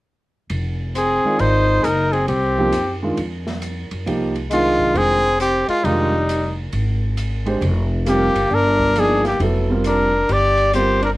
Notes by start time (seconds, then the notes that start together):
0.50 F1, ride
0.95 C4 G#4, hi-hat pedal, ride
1.24 D#3 G#3 F4 D5, muted upright bass stroke
1.39 G#1 D#4 C5, ride
1.81 F#1 C4 D#4 G#4 A#4, hi-hat pedal, ride
2.12 C4 G#4, ride
2.28 C2 C4 G4, ride
2.58 F3 A#3 D#4 G4
2.72 F#2, hi-hat pedal, ride
3.02 D#3 G#3 D4 F4
3.17 F2, ride
3.47 snare
3.62 hi-hat pedal, ride
3.91 F#2, ride
4.06 C2 F3 A#3 D#4 G4, ride
4.35 ride
4.51 D#3 G#3 D4 F4, hi-hat pedal, ride
4.79 kick
4.94 F1 C4 G#4, ride
5.40 C4 G4, hi-hat pedal, ride
5.68 G#3 F4, muted upright bass stroke, ride
5.84 F1 D#3 G3 G#3 D4 D#4 F4, ride
6.29 hi-hat pedal, ride
6.73 G#1, ride
7.17 hi-hat pedal, ride
7.46 G#3 D4 G4 C5, ride
7.61 F1, ride
8.06 G3 A#3 C4 F4 G4 A#4, hi-hat pedal, ride
8.35 F#1, ride
8.51 G1 D4 A#4
8.79 kick
8.96 F3 A#3 D4 D#4 G#4, hi-hat pedal, ride
9.00 G#4
9.24 A#3 G4, snare, ride
9.40 F1 F#3 B3 E4 A4, ride
9.70 G3 C4 F4 A#4
9.84 D4 A#4, hi-hat pedal, ride
10.29 G1 G4 D5, ride
10.58 ride
10.73 G3 C4 F4 G4 A#4 C5, hi-hat pedal, ride
11.03 D4 A#4, ride